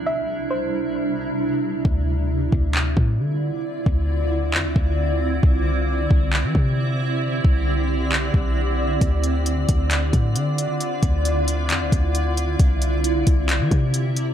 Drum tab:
HH |--------|--------|--------|--------|
CP |--------|----x---|----x---|----x---|
BD |--------|o--o-o--|-o---o--|o--o-o--|

HH |--------|xxxxxxxx|xxxxxxxx|xxxxxxxx|
CP |----x---|----x---|----x---|----x---|
BD |-o---o--|o--o-o--|-o---o--|o--o-o--|